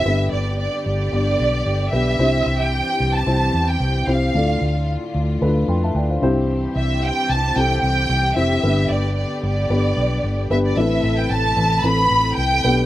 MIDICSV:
0, 0, Header, 1, 5, 480
1, 0, Start_track
1, 0, Key_signature, 0, "major"
1, 0, Tempo, 535906
1, 47, Time_signature, 4, 2, 24, 8
1, 11517, End_track
2, 0, Start_track
2, 0, Title_t, "Violin section"
2, 0, Program_c, 0, 48
2, 0, Note_on_c, 0, 76, 86
2, 255, Note_off_c, 0, 76, 0
2, 286, Note_on_c, 0, 74, 75
2, 508, Note_off_c, 0, 74, 0
2, 519, Note_on_c, 0, 74, 73
2, 746, Note_off_c, 0, 74, 0
2, 763, Note_on_c, 0, 74, 80
2, 1690, Note_off_c, 0, 74, 0
2, 1720, Note_on_c, 0, 76, 83
2, 2336, Note_on_c, 0, 79, 80
2, 2338, Note_off_c, 0, 76, 0
2, 2817, Note_on_c, 0, 81, 73
2, 2819, Note_off_c, 0, 79, 0
2, 3300, Note_off_c, 0, 81, 0
2, 3300, Note_on_c, 0, 79, 73
2, 3646, Note_off_c, 0, 79, 0
2, 3648, Note_on_c, 0, 77, 73
2, 4368, Note_off_c, 0, 77, 0
2, 6055, Note_on_c, 0, 76, 78
2, 6275, Note_off_c, 0, 76, 0
2, 6301, Note_on_c, 0, 79, 91
2, 6535, Note_off_c, 0, 79, 0
2, 6540, Note_on_c, 0, 81, 86
2, 6774, Note_off_c, 0, 81, 0
2, 6782, Note_on_c, 0, 79, 95
2, 6998, Note_off_c, 0, 79, 0
2, 7009, Note_on_c, 0, 79, 91
2, 7455, Note_off_c, 0, 79, 0
2, 7493, Note_on_c, 0, 76, 83
2, 7967, Note_on_c, 0, 74, 79
2, 7970, Note_off_c, 0, 76, 0
2, 8205, Note_off_c, 0, 74, 0
2, 8216, Note_on_c, 0, 74, 62
2, 8435, Note_off_c, 0, 74, 0
2, 8462, Note_on_c, 0, 74, 75
2, 9379, Note_off_c, 0, 74, 0
2, 9412, Note_on_c, 0, 76, 73
2, 9471, Note_off_c, 0, 76, 0
2, 9545, Note_on_c, 0, 74, 72
2, 9642, Note_off_c, 0, 74, 0
2, 9649, Note_on_c, 0, 76, 75
2, 10015, Note_on_c, 0, 79, 76
2, 10022, Note_off_c, 0, 76, 0
2, 10115, Note_on_c, 0, 81, 85
2, 10124, Note_off_c, 0, 79, 0
2, 10588, Note_on_c, 0, 83, 96
2, 10601, Note_off_c, 0, 81, 0
2, 11073, Note_on_c, 0, 79, 98
2, 11077, Note_off_c, 0, 83, 0
2, 11517, Note_off_c, 0, 79, 0
2, 11517, End_track
3, 0, Start_track
3, 0, Title_t, "Upright piano"
3, 0, Program_c, 1, 0
3, 0, Control_c, 1, 64, 127
3, 49, Note_on_c, 1, 67, 53
3, 50, Note_on_c, 1, 50, 50
3, 50, Note_on_c, 1, 59, 58
3, 51, Note_on_c, 1, 62, 54
3, 52, Note_on_c, 1, 43, 51
3, 52, Note_on_c, 1, 71, 66
3, 61, Control_c, 1, 64, 0
3, 216, Control_c, 1, 64, 127
3, 733, Note_off_c, 1, 50, 0
3, 734, Note_off_c, 1, 43, 0
3, 904, Note_off_c, 1, 67, 0
3, 905, Note_off_c, 1, 59, 0
3, 905, Note_off_c, 1, 62, 0
3, 906, Note_off_c, 1, 71, 0
3, 1002, Note_on_c, 1, 62, 58
3, 1003, Note_on_c, 1, 59, 54
3, 1006, Note_on_c, 1, 74, 65
3, 1007, Note_on_c, 1, 67, 51
3, 1647, Note_off_c, 1, 59, 0
3, 1647, Note_off_c, 1, 62, 0
3, 1649, Note_off_c, 1, 67, 0
3, 1649, Note_off_c, 1, 74, 0
3, 1725, Note_on_c, 1, 62, 49
3, 1726, Note_on_c, 1, 59, 57
3, 1726, Note_on_c, 1, 71, 61
3, 1727, Note_on_c, 1, 67, 49
3, 1940, Note_off_c, 1, 62, 0
3, 1941, Note_off_c, 1, 59, 0
3, 1941, Note_off_c, 1, 67, 0
3, 1941, Note_off_c, 1, 71, 0
3, 1965, Note_on_c, 1, 43, 53
3, 1965, Note_on_c, 1, 64, 58
3, 1967, Note_on_c, 1, 60, 60
3, 1967, Note_on_c, 1, 72, 69
3, 1969, Note_on_c, 1, 67, 54
3, 1980, Control_c, 1, 64, 0
3, 2140, Control_c, 1, 64, 127
3, 2651, Note_off_c, 1, 43, 0
3, 2822, Note_off_c, 1, 64, 0
3, 2823, Note_off_c, 1, 60, 0
3, 2823, Note_off_c, 1, 72, 0
3, 2824, Note_off_c, 1, 67, 0
3, 2925, Note_on_c, 1, 60, 56
3, 2929, Note_on_c, 1, 67, 53
3, 2930, Note_on_c, 1, 64, 52
3, 2932, Note_on_c, 1, 72, 62
3, 3569, Note_off_c, 1, 60, 0
3, 3570, Note_off_c, 1, 67, 0
3, 3571, Note_off_c, 1, 64, 0
3, 3572, Note_off_c, 1, 72, 0
3, 3650, Note_on_c, 1, 64, 56
3, 3651, Note_on_c, 1, 60, 60
3, 3652, Note_on_c, 1, 67, 49
3, 3655, Note_on_c, 1, 72, 62
3, 3863, Note_off_c, 1, 60, 0
3, 3863, Note_off_c, 1, 64, 0
3, 3864, Note_off_c, 1, 67, 0
3, 3865, Note_off_c, 1, 72, 0
3, 3894, Note_on_c, 1, 65, 52
3, 3895, Note_on_c, 1, 45, 59
3, 3895, Note_on_c, 1, 69, 55
3, 3896, Note_on_c, 1, 62, 57
3, 3899, Note_on_c, 1, 74, 74
3, 3900, Control_c, 1, 64, 0
3, 4069, Control_c, 1, 64, 127
3, 4576, Note_off_c, 1, 45, 0
3, 4747, Note_off_c, 1, 65, 0
3, 4748, Note_off_c, 1, 62, 0
3, 4748, Note_off_c, 1, 69, 0
3, 4749, Note_off_c, 1, 74, 0
3, 4850, Note_on_c, 1, 62, 69
3, 4850, Note_on_c, 1, 65, 64
3, 4850, Note_on_c, 1, 69, 64
3, 4854, Note_on_c, 1, 71, 84
3, 5091, Note_off_c, 1, 71, 0
3, 5091, Note_on_c, 1, 84, 53
3, 5096, Note_on_c, 1, 79, 49
3, 5217, Note_off_c, 1, 84, 0
3, 5220, Note_off_c, 1, 79, 0
3, 5227, Note_on_c, 1, 81, 63
3, 5232, Note_on_c, 1, 76, 57
3, 5325, Note_off_c, 1, 81, 0
3, 5328, Note_off_c, 1, 76, 0
3, 5332, Note_on_c, 1, 79, 58
3, 5340, Note_on_c, 1, 74, 47
3, 5458, Note_off_c, 1, 79, 0
3, 5462, Note_off_c, 1, 74, 0
3, 5463, Note_on_c, 1, 77, 56
3, 5471, Note_on_c, 1, 72, 50
3, 5491, Note_off_c, 1, 62, 0
3, 5491, Note_off_c, 1, 65, 0
3, 5491, Note_off_c, 1, 69, 0
3, 5564, Note_off_c, 1, 72, 0
3, 5569, Note_on_c, 1, 60, 75
3, 5573, Note_on_c, 1, 64, 76
3, 5574, Note_on_c, 1, 67, 77
3, 5575, Note_on_c, 1, 43, 69
3, 5578, Note_on_c, 1, 72, 94
3, 5579, Control_c, 1, 64, 0
3, 5691, Note_off_c, 1, 77, 0
3, 5722, Control_c, 1, 64, 127
3, 6256, Note_off_c, 1, 43, 0
3, 6424, Note_off_c, 1, 60, 0
3, 6426, Note_off_c, 1, 64, 0
3, 6427, Note_off_c, 1, 67, 0
3, 6429, Note_off_c, 1, 72, 0
3, 6771, Note_on_c, 1, 60, 62
3, 6771, Note_on_c, 1, 67, 55
3, 6773, Note_on_c, 1, 64, 54
3, 6774, Note_on_c, 1, 69, 66
3, 7411, Note_off_c, 1, 60, 0
3, 7411, Note_off_c, 1, 67, 0
3, 7412, Note_off_c, 1, 64, 0
3, 7413, Note_off_c, 1, 69, 0
3, 7489, Note_on_c, 1, 60, 66
3, 7489, Note_on_c, 1, 64, 60
3, 7489, Note_on_c, 1, 67, 52
3, 7490, Note_on_c, 1, 72, 63
3, 7702, Note_off_c, 1, 60, 0
3, 7702, Note_off_c, 1, 64, 0
3, 7702, Note_off_c, 1, 67, 0
3, 7703, Note_off_c, 1, 72, 0
3, 7729, Note_on_c, 1, 59, 59
3, 7730, Note_on_c, 1, 62, 51
3, 7731, Note_on_c, 1, 67, 56
3, 7732, Note_on_c, 1, 50, 52
3, 7733, Note_on_c, 1, 43, 50
3, 7733, Note_on_c, 1, 71, 72
3, 7741, Control_c, 1, 64, 0
3, 7919, Control_c, 1, 64, 127
3, 8414, Note_off_c, 1, 43, 0
3, 8414, Note_off_c, 1, 50, 0
3, 8584, Note_off_c, 1, 59, 0
3, 8585, Note_off_c, 1, 62, 0
3, 8585, Note_off_c, 1, 67, 0
3, 8586, Note_off_c, 1, 71, 0
3, 8687, Note_on_c, 1, 59, 65
3, 8687, Note_on_c, 1, 62, 55
3, 8689, Note_on_c, 1, 67, 55
3, 8690, Note_on_c, 1, 71, 69
3, 9329, Note_off_c, 1, 59, 0
3, 9329, Note_off_c, 1, 62, 0
3, 9330, Note_off_c, 1, 67, 0
3, 9331, Note_off_c, 1, 71, 0
3, 9409, Note_on_c, 1, 59, 69
3, 9409, Note_on_c, 1, 62, 64
3, 9411, Note_on_c, 1, 67, 66
3, 9412, Note_on_c, 1, 71, 77
3, 9622, Note_off_c, 1, 59, 0
3, 9622, Note_off_c, 1, 62, 0
3, 9623, Note_off_c, 1, 67, 0
3, 9624, Note_off_c, 1, 71, 0
3, 9647, Note_on_c, 1, 45, 57
3, 9647, Note_on_c, 1, 64, 54
3, 9648, Note_on_c, 1, 60, 59
3, 9649, Note_on_c, 1, 52, 50
3, 9651, Note_on_c, 1, 69, 58
3, 9651, Note_on_c, 1, 71, 68
3, 9657, Control_c, 1, 64, 0
3, 9809, Control_c, 1, 64, 127
3, 10332, Note_off_c, 1, 45, 0
3, 10332, Note_off_c, 1, 52, 0
3, 10503, Note_off_c, 1, 60, 0
3, 10503, Note_off_c, 1, 64, 0
3, 10505, Note_off_c, 1, 69, 0
3, 10505, Note_off_c, 1, 71, 0
3, 10604, Note_on_c, 1, 60, 61
3, 10604, Note_on_c, 1, 64, 54
3, 10604, Note_on_c, 1, 69, 60
3, 10607, Note_on_c, 1, 71, 66
3, 11312, Note_off_c, 1, 71, 0
3, 11313, Note_off_c, 1, 69, 0
3, 11322, Note_on_c, 1, 62, 64
3, 11324, Note_on_c, 1, 59, 59
3, 11325, Note_off_c, 1, 64, 0
3, 11325, Note_on_c, 1, 47, 58
3, 11326, Note_off_c, 1, 60, 0
3, 11326, Note_on_c, 1, 67, 66
3, 11326, Note_on_c, 1, 71, 81
3, 11327, Note_on_c, 1, 69, 64
3, 11339, Control_c, 1, 64, 0
3, 11470, Control_c, 1, 64, 127
3, 11517, Note_off_c, 1, 47, 0
3, 11517, Note_off_c, 1, 59, 0
3, 11517, Note_off_c, 1, 62, 0
3, 11517, Note_off_c, 1, 67, 0
3, 11517, Note_off_c, 1, 69, 0
3, 11517, Note_off_c, 1, 71, 0
3, 11517, End_track
4, 0, Start_track
4, 0, Title_t, "String section"
4, 0, Program_c, 2, 48
4, 53, Note_on_c, 2, 59, 59
4, 54, Note_on_c, 2, 50, 65
4, 56, Note_on_c, 2, 67, 79
4, 1951, Note_off_c, 2, 59, 0
4, 1952, Note_off_c, 2, 50, 0
4, 1965, Note_on_c, 2, 60, 64
4, 1966, Note_on_c, 2, 52, 68
4, 3856, Note_off_c, 2, 67, 0
4, 3867, Note_off_c, 2, 60, 0
4, 3868, Note_off_c, 2, 52, 0
4, 3884, Note_on_c, 2, 65, 75
4, 3887, Note_on_c, 2, 50, 64
4, 3889, Note_on_c, 2, 57, 64
4, 5549, Note_off_c, 2, 65, 0
4, 5551, Note_off_c, 2, 50, 0
4, 5551, Note_off_c, 2, 57, 0
4, 5563, Note_on_c, 2, 67, 78
4, 5566, Note_on_c, 2, 52, 69
4, 5567, Note_on_c, 2, 60, 61
4, 7705, Note_off_c, 2, 52, 0
4, 7706, Note_off_c, 2, 60, 0
4, 7730, Note_on_c, 2, 50, 66
4, 7731, Note_on_c, 2, 59, 64
4, 9609, Note_off_c, 2, 67, 0
4, 9630, Note_off_c, 2, 50, 0
4, 9630, Note_off_c, 2, 59, 0
4, 9645, Note_on_c, 2, 71, 61
4, 9648, Note_on_c, 2, 69, 75
4, 9650, Note_on_c, 2, 48, 67
4, 11309, Note_off_c, 2, 71, 0
4, 11310, Note_off_c, 2, 69, 0
4, 11312, Note_off_c, 2, 48, 0
4, 11325, Note_on_c, 2, 57, 62
4, 11327, Note_on_c, 2, 67, 77
4, 11328, Note_on_c, 2, 47, 70
4, 11517, Note_off_c, 2, 47, 0
4, 11517, Note_off_c, 2, 57, 0
4, 11517, Note_off_c, 2, 67, 0
4, 11517, End_track
5, 0, Start_track
5, 0, Title_t, "Fingered electric bass"
5, 0, Program_c, 3, 33
5, 48, Note_on_c, 3, 31, 81
5, 245, Note_off_c, 3, 31, 0
5, 291, Note_on_c, 3, 31, 75
5, 597, Note_off_c, 3, 31, 0
5, 769, Note_on_c, 3, 31, 87
5, 965, Note_off_c, 3, 31, 0
5, 1008, Note_on_c, 3, 31, 85
5, 1205, Note_off_c, 3, 31, 0
5, 1248, Note_on_c, 3, 35, 75
5, 1445, Note_off_c, 3, 35, 0
5, 1486, Note_on_c, 3, 31, 79
5, 1684, Note_off_c, 3, 31, 0
5, 1725, Note_on_c, 3, 35, 72
5, 1923, Note_off_c, 3, 35, 0
5, 1961, Note_on_c, 3, 36, 92
5, 2160, Note_off_c, 3, 36, 0
5, 2203, Note_on_c, 3, 36, 76
5, 2512, Note_off_c, 3, 36, 0
5, 2688, Note_on_c, 3, 36, 81
5, 2885, Note_off_c, 3, 36, 0
5, 2925, Note_on_c, 3, 36, 97
5, 3123, Note_off_c, 3, 36, 0
5, 3165, Note_on_c, 3, 40, 74
5, 3363, Note_off_c, 3, 40, 0
5, 3404, Note_on_c, 3, 36, 81
5, 3602, Note_off_c, 3, 36, 0
5, 3645, Note_on_c, 3, 36, 81
5, 3843, Note_off_c, 3, 36, 0
5, 3889, Note_on_c, 3, 38, 80
5, 4085, Note_off_c, 3, 38, 0
5, 4132, Note_on_c, 3, 38, 83
5, 4438, Note_off_c, 3, 38, 0
5, 4609, Note_on_c, 3, 38, 83
5, 4805, Note_off_c, 3, 38, 0
5, 4850, Note_on_c, 3, 38, 88
5, 5046, Note_off_c, 3, 38, 0
5, 5087, Note_on_c, 3, 41, 69
5, 5284, Note_off_c, 3, 41, 0
5, 5326, Note_on_c, 3, 38, 86
5, 5523, Note_off_c, 3, 38, 0
5, 5571, Note_on_c, 3, 36, 74
5, 5963, Note_off_c, 3, 36, 0
5, 6050, Note_on_c, 3, 36, 89
5, 6356, Note_off_c, 3, 36, 0
5, 6533, Note_on_c, 3, 36, 78
5, 6727, Note_off_c, 3, 36, 0
5, 6771, Note_on_c, 3, 36, 101
5, 6967, Note_off_c, 3, 36, 0
5, 7009, Note_on_c, 3, 36, 75
5, 7205, Note_off_c, 3, 36, 0
5, 7248, Note_on_c, 3, 36, 78
5, 7445, Note_off_c, 3, 36, 0
5, 7492, Note_on_c, 3, 29, 76
5, 7687, Note_off_c, 3, 29, 0
5, 7731, Note_on_c, 3, 31, 91
5, 7926, Note_off_c, 3, 31, 0
5, 7967, Note_on_c, 3, 31, 73
5, 8274, Note_off_c, 3, 31, 0
5, 8447, Note_on_c, 3, 31, 84
5, 8644, Note_off_c, 3, 31, 0
5, 8684, Note_on_c, 3, 31, 98
5, 8882, Note_off_c, 3, 31, 0
5, 8925, Note_on_c, 3, 35, 67
5, 9123, Note_off_c, 3, 35, 0
5, 9168, Note_on_c, 3, 31, 85
5, 9365, Note_off_c, 3, 31, 0
5, 9406, Note_on_c, 3, 31, 81
5, 9603, Note_off_c, 3, 31, 0
5, 9642, Note_on_c, 3, 33, 87
5, 9841, Note_off_c, 3, 33, 0
5, 9883, Note_on_c, 3, 33, 79
5, 10081, Note_off_c, 3, 33, 0
5, 10121, Note_on_c, 3, 33, 90
5, 10320, Note_off_c, 3, 33, 0
5, 10361, Note_on_c, 3, 33, 93
5, 10560, Note_off_c, 3, 33, 0
5, 10600, Note_on_c, 3, 33, 98
5, 10800, Note_off_c, 3, 33, 0
5, 10842, Note_on_c, 3, 33, 84
5, 11041, Note_off_c, 3, 33, 0
5, 11081, Note_on_c, 3, 36, 74
5, 11281, Note_off_c, 3, 36, 0
5, 11324, Note_on_c, 3, 35, 89
5, 11517, Note_off_c, 3, 35, 0
5, 11517, End_track
0, 0, End_of_file